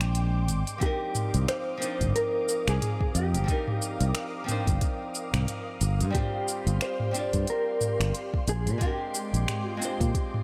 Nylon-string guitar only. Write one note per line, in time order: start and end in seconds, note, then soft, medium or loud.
0.00 0.76 G#3 medium
0.00 0.77 C4 medium
0.00 0.78 D4 medium
0.00 0.80 C5 medium
0.00 0.79 G5 medium
0.78 1.76 F3 medium
0.78 1.77 C4 medium
0.78 1.78 D4 medium
0.84 1.79 D#4 medium
0.84 1.80 A#4 medium
1.77 3.43 F3 medium
1.77 3.44 C4 medium
1.77 3.45 D4 medium
1.83 3.46 D#4 medium
1.83 3.47 C5 medium
3.44 4.43 F3 medium
3.44 4.43 C4 medium
3.44 4.45 D4 medium
3.50 4.45 D#4 medium
3.50 4.46 A#4 loud
4.44 5.78 F3 medium
4.44 5.79 C4 medium
4.48 5.80 D4 medium
4.48 5.80 D#4 medium
4.48 5.81 C5 medium
6.10 7.09 G3 medium
6.10 7.10 C4 medium
6.10 7.11 D4 medium
6.16 7.12 F4 medium
6.16 7.13 C5 medium
7.11 8.45 G3 medium
7.11 8.45 C4 medium
7.11 8.46 D4 medium
7.17 8.47 F4 medium
7.17 8.48 D5 medium
8.78 9.76 G#3 medium
8.78 9.77 C4 medium
8.78 9.78 D4 medium
8.83 9.79 G4 medium
8.83 9.80 A#4 medium
9.77 10.43 G#3 medium
9.77 10.43 C4 medium
9.81 10.43 D4 medium
9.81 10.43 G4 medium
9.81 10.43 C5 medium